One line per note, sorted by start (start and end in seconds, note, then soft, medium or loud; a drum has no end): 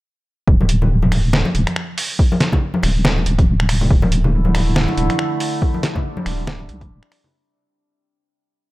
0.48 1.44 D1 loud
0.48 kick loud
0.61 high conga medium
0.69 closed hi-hat medium
0.82 low conga medium
1.02 high conga loud
1.12 finger snap soft
1.12 open hi-hat medium
1.12 muted conga medium
1.33 snare loud
1.45 muted conga medium
1.45 high conga medium
1.55 1.66 D1 medium
1.55 closed hi-hat medium
1.67 finger snap soft
1.67 closed hi-hat soft
1.67 high conga medium
1.76 finger snap medium
1.98 open hi-hat medium
2.19 kick loud
2.32 high conga loud
2.40 snare medium
2.40 closed hi-hat medium
2.52 kick medium
2.52 muted conga medium
2.52 low conga medium
2.74 high conga loud
2.83 3.25 D1 medium
2.83 finger snap soft
2.83 open hi-hat medium
2.83 muted conga medium
3.05 snare loud
3.18 high conga medium
3.26 3.89 D1 medium
3.26 closed hi-hat medium
3.39 kick loud
3.39 closed hi-hat soft
3.39 high conga medium
3.60 finger snap medium
3.69 finger snap medium
3.69 open hi-hat loud
3.81 low conga medium
3.91 4.87 D1 loud
3.91 5.60 D3 medium
3.91 5.60 A3 medium
3.91 5.60 E4 medium
3.91 kick loud
4.02 high conga loud
4.12 closed hi-hat medium
4.24 low conga medium
4.45 high conga medium
4.55 finger snap medium
4.55 open hi-hat medium
4.55 muted conga medium
4.76 snare loud
4.88 muted conga soft
4.88 high conga medium
4.98 5.09 D1 medium
4.98 closed hi-hat medium
5.10 finger snap medium
5.10 closed hi-hat soft
5.10 high conga medium
5.19 finger snap medium
5.40 open hi-hat medium
5.62 7.31 C3 medium
5.62 7.31 G3 medium
5.62 7.31 D4 medium
5.62 kick loud
5.74 high conga medium
5.83 snare medium
5.83 closed hi-hat medium
5.96 kick medium
5.96 muted conga medium
5.96 low conga medium
6.17 high conga loud
6.26 6.71 D1 medium
6.26 finger snap medium
6.26 open hi-hat medium
6.26 muted conga medium
6.47 snare loud
6.59 high conga medium
6.69 6.83 C2 medium
6.69 closed hi-hat medium
6.80 7.01 E1 medium
6.80 kick loud
6.80 closed hi-hat soft
6.80 high conga medium
7.03 finger snap medium
7.12 finger snap medium
7.12 open hi-hat medium
7.24 low conga medium